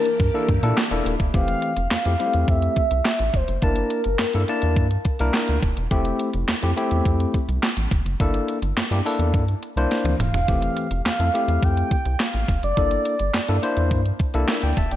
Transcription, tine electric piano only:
0.34 0.49 A#3 medium
0.34 0.49 D4 medium
0.34 0.49 E4 medium
0.34 0.50 A4 loud
0.63 0.78 A#3 medium
0.63 0.78 D4 medium
0.63 0.78 E4 medium
0.63 0.78 A4 loud
0.91 1.14 A#3 loud
0.91 1.14 D4 medium
0.91 1.14 E4 medium
0.91 1.14 A4 medium
1.34 1.72 E3 medium
1.34 1.72 A3 medium
1.34 1.72 C4 medium
1.34 1.72 G4 medium
2.05 2.13 A3 medium
2.05 2.13 C4 medium
2.05 2.13 E4 medium
2.05 2.13 G4 medium
2.19 2.26 G3 medium
2.19 2.80 C4 medium
2.19 2.80 E4 medium
2.19 2.80 G4 medium
2.26 2.83 A3 medium
3.63 4.00 A#3 medium
3.63 4.00 D4 medium
3.63 4.01 E4 medium
3.63 4.01 A5 medium
4.34 4.42 A#3 medium
4.34 4.42 D4 medium
4.34 4.42 E4 medium
4.34 4.42 A4 loud
4.49 4.86 A#3 medium
4.49 4.86 D4 medium
4.49 4.86 E4 medium
4.49 4.86 A5 loud
5.20 5.57 A#3 medium
5.20 5.58 D4 medium
5.20 5.58 E4 medium
5.20 5.58 A#4 loud
5.91 6.29 A3 medium
5.91 6.29 C4 medium
5.91 6.29 E4 medium
5.91 6.29 G4 loud
6.62 6.70 A3 medium
6.62 6.70 C4 medium
6.62 6.70 E4 medium
6.62 6.71 G4 medium
6.77 7.37 A3 medium
6.77 7.37 C4 medium
6.77 7.37 E4 medium
6.77 7.37 G4 loud
8.20 8.57 A#3 medium
8.20 8.58 D4 medium
8.20 8.58 E4 medium
8.20 8.58 A4 loud
8.91 8.99 A#3 medium
8.91 8.99 D4 medium
8.91 8.99 E4 medium
8.91 8.99 G4 loud
9.05 9.43 A#3 medium
9.05 9.43 D4 medium
9.05 9.43 E4 medium
9.05 9.43 A4 medium
9.77 10.15 A#3 medium
9.77 10.15 D4 medium
9.77 10.15 E4 medium
9.77 10.15 C5 loud
10.49 10.86 E3 medium
10.49 10.86 A3 medium
10.49 10.86 C4 medium
10.49 10.86 G4 medium
11.20 11.27 A3 medium
11.20 11.27 C4 medium
11.20 11.28 E4 medium
11.20 11.28 A4 medium
11.34 11.94 A3 medium
11.34 11.94 C4 medium
11.34 11.94 E4 medium
11.34 11.95 G4 medium
12.77 13.15 A#3 medium
12.77 13.15 D4 medium
12.77 13.15 E4 medium
12.77 13.15 A4 medium
13.48 13.56 A#3 medium
13.48 13.56 D4 medium
13.48 13.56 E4 medium
13.48 13.56 A4 medium
13.62 14.00 A#3 medium
13.62 14.00 D4 medium
13.62 14.00 E4 medium
13.62 14.01 C5 loud
14.34 14.72 A#3 medium
14.34 14.72 D4 medium
14.34 14.72 E4 medium
14.34 14.49 A4 loud
14.50 14.63 A#4 medium
14.63 14.77 D5 medium
14.63 14.77 G5 medium
14.78 14.91 E5 medium
14.78 14.91 A5 medium
14.92 14.96 D5 medium
14.92 14.96 G5 medium

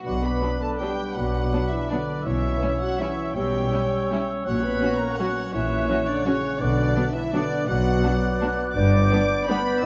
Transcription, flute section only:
0.06 1.14 D6 soft
1.16 1.89 D6 soft
1.91 2.26 D6 soft
2.25 2.99 E6 soft
3.00 3.35 E6 soft
3.36 4.44 E6 soft
4.46 5.18 F#6 soft
5.19 5.53 F#6 soft
5.54 6.24 F#6 medium
6.27 6.60 F#6 soft
6.61 7.07 F#6 medium
7.35 7.68 F#6 medium
7.69 8.74 F#6 medium
8.75 9.47 G6 medium
9.48 9.86 G6 medium

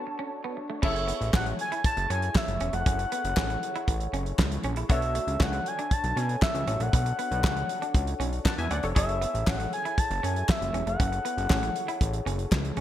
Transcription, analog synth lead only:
0.00 0.58 A5 loud
0.85 1.31 E5 medium
1.36 1.47 F#5 loud
1.61 1.84 G#5 loud
1.86 2.09 A5 loud
2.12 2.38 G#5 loud
2.36 2.74 E5 medium
2.74 4.22 F#5 loud
4.91 5.44 E5 loud
5.42 5.69 F#5 loud
5.68 5.94 G#5 loud
5.93 6.19 A5 loud
6.18 6.42 G#5 loud
6.43 6.83 E5 loud
6.82 8.34 F#5 loud
8.97 9.50 E5 loud
9.48 9.73 F#5 loud
9.74 10.01 G#5 loud
9.99 10.26 A5 loud
10.24 10.51 G#5 loud
10.50 10.87 E5 loud
10.88 12.36 F#5 loud

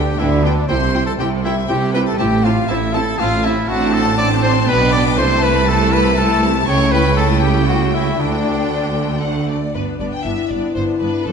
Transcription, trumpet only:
0.00 0.20 G4 medium
0.19 0.45 E4 medium
0.43 0.68 D4 medium
0.68 1.06 C5 medium
1.06 1.12 A4 medium
1.19 1.30 G4 medium
1.44 1.55 E4 medium
1.68 1.93 G4 medium
1.93 1.99 B4 medium
2.07 2.19 A4 medium
2.19 2.46 G4 medium
2.44 2.68 F4 medium
2.69 2.95 E4 medium
2.94 3.21 A4 medium
3.19 3.46 F4 loud
3.44 3.70 E4 medium
3.69 3.94 F#4 loud
3.93 4.17 A4 medium
4.18 4.29 D5 loud
4.42 4.54 C5 medium
4.68 4.92 B4 loud
4.92 5.04 D5 loud
5.18 5.44 C5 loud
5.42 5.70 B4 medium
5.68 5.94 A4 medium
5.93 6.19 B4 medium
6.18 6.50 A4 loud
6.67 6.93 C#5 loud
6.92 7.16 B4 medium
7.17 7.28 A4 medium
7.42 7.67 G4 medium
7.68 7.96 F#4 medium
7.94 8.22 E4 medium
8.20 9.24 D4 medium

